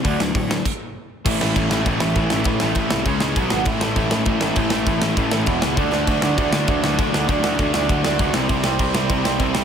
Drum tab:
CC |----x---|x-x-x-x-|x-x-x-x-|x-x-x-x-|
HH |o-o-----|--------|--------|--------|
SD |-o-o----|-o-o-o-o|-o-o-o-o|-o-o-o-o|
BD |o-o-o---|o-o-o-o-|o-o-o-o-|o-o-o-o-|

CC |x-x-x-x-|x-x-x-x-|x-x-x-x-|x-x-x-x-|
HH |--------|--------|--------|--------|
SD |-o-o-o-o|-o-o-o-o|-o-o-o-o|-o-o-o-o|
BD |o-o-o-o-|o-o-o-o-|o-o-o-o-|o-o-o-o-|